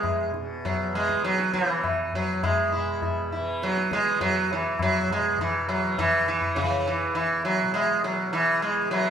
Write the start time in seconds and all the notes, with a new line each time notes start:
Already playing: E2 B2 E3 G#3
0.03 tabla na, tabla ge
0.30 B2, tabla te
0.65 F#3, tabla tin, tabla ge
0.91 E3, tabla na
0.95 G#3
1.09 tabla ke
1.24 F#3, tabla te
1.40 tabla te
1.52 E3, tabla ke
1.69 tabla te
1.84 tabla na, tabla ge
2.13 E2 F#3, tabla ge
2.43 G#3, tabla na, tabla ge
2.72 B2 E4
3.02 E4, tabla tin, tabla ge
3.32 E3 E4, tabla na
3.62 F#3, tabla te
3.77 tabla te
3.91 G#3, tabla ke
3.97 E3
4.07 tabla te
4.21 F#3, tabla tin, tabla ge
4.51 E3, tabla na
4.58 E2
4.79 F#3, tabla na, tabla ge
5.09 G#3, tabla ge
5.19 B2
5.38 E3, tabla tin, tabla ge
5.69 F#3, tabla na
5.81 E3
5.98 E3, tabla na, tabla ge
6.28 E3, tabla te
6.41 E3, tabla ge
6.56 C#3, tabla tin, tabla ge
6.87 E3
7.03 E2
7.15 E3, tabla na
7.45 F#3, tabla na
7.63 B2
7.74 G#3, tabla na
8.04 F#3
8.27 E3
8.33 E3, tabla na
8.62 G#3
8.85 E3
8.91 F#3, tabla na